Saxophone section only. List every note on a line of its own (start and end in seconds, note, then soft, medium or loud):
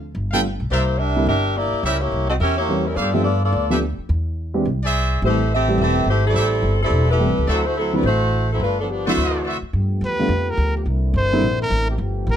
0.71 0.98 A#3 medium
0.71 0.97 E4 medium
0.71 0.98 G4 medium
0.71 0.98 C5 medium
0.99 1.26 D4 medium
0.99 1.26 G4 medium
0.99 1.26 A#4 medium
0.99 1.27 E5 medium
1.27 1.54 D4 medium
1.27 1.54 G4 medium
1.27 1.54 A#4 medium
1.27 1.54 E5 loud
1.56 1.84 A#3 medium
1.56 1.83 E4 medium
1.56 1.84 G4 medium
1.56 1.85 D5 medium
1.84 2.00 G3 medium
1.84 2.00 C#4 medium
1.84 2.00 E4 medium
1.84 2.00 A#4 medium
2.01 2.29 A#3 medium
2.01 2.29 E4 medium
2.01 2.29 G4 medium
2.01 2.29 C#5 medium
2.29 2.34 C4 medium
2.29 2.34 F#4 medium
2.29 2.34 A4 medium
2.29 2.34 D#5 medium
2.40 2.56 C#4 medium
2.40 2.57 G4 medium
2.40 2.56 A#4 medium
2.40 2.56 E5 loud
2.57 2.84 A#3 medium
2.57 2.84 E4 medium
2.57 2.84 G4 medium
2.57 2.84 C#5 medium
2.86 2.97 G3 medium
2.86 2.97 C#4 medium
2.86 2.97 E4 medium
2.86 2.97 A#4 medium
2.96 3.13 B3 medium
2.96 3.12 F4 medium
2.96 3.12 A4 medium
2.96 3.14 D5 medium
3.13 3.24 C4 medium
3.13 3.23 F4 medium
3.13 3.22 A4 medium
3.13 3.25 E5 medium
3.24 3.40 B3 medium
3.24 3.40 F4 medium
3.24 3.40 A4 medium
3.24 3.40 D5 medium
3.43 3.69 B3 medium
3.43 3.69 F4 medium
3.43 3.69 A4 medium
3.43 3.69 D5 medium
5.25 5.50 A3 medium
5.25 5.50 E4 medium
5.25 5.50 G4 medium
5.25 5.50 C5 medium
5.54 5.79 C4 medium
5.54 5.79 G4 medium
5.54 5.79 A4 medium
5.54 5.79 E5 medium
5.82 6.06 C4 medium
5.82 6.07 G4 medium
5.82 6.07 A4 medium
5.82 6.06 E5 loud
6.10 6.24 A3 medium
6.10 6.25 E4 medium
6.10 6.25 G4 medium
6.10 6.25 C5 medium
6.27 6.78 G3 medium
6.27 6.78 C4 medium
6.27 6.78 E4 medium
6.27 6.78 A4 loud
6.83 7.08 G3 medium
6.83 7.08 C4 medium
6.83 7.08 E4 medium
6.83 7.08 A4 medium
7.11 7.46 A3 medium
7.11 7.46 E4 medium
7.11 7.46 G4 medium
7.11 7.46 B4 medium
7.50 7.66 F#3 medium
7.50 7.66 C4 medium
7.50 7.65 E4 medium
7.50 7.66 A4 medium
7.66 7.77 A3 medium
7.66 7.76 E4 medium
7.66 7.77 F#4 medium
7.66 7.77 C5 medium
7.77 7.93 F#3 medium
7.77 7.93 C4 medium
7.77 7.93 E4 medium
7.77 7.93 A4 medium
7.95 8.05 G3 medium
7.95 8.05 C4 medium
7.95 8.05 E4 medium
7.95 8.05 B4 medium
8.06 8.47 A3 medium
8.06 8.47 E4 medium
8.06 8.48 F#4 medium
8.06 8.47 C5 medium
8.52 8.62 F#3 medium
8.52 8.62 C4 medium
8.52 8.62 E4 medium
8.52 8.62 A4 medium
8.63 8.78 A3 medium
8.63 8.78 D4 medium
8.63 8.78 F4 medium
8.63 8.78 B4 medium
8.80 8.89 F3 medium
8.80 8.89 B3 medium
8.80 8.89 D4 medium
8.80 8.89 A4 medium
8.90 9.07 F3 medium
8.90 9.07 B3 medium
8.90 9.07 D4 medium
8.90 9.07 G4 medium
9.07 9.59 E3 medium
9.07 9.59 A3 medium
9.07 9.59 C4 medium
9.07 9.59 F#4 medium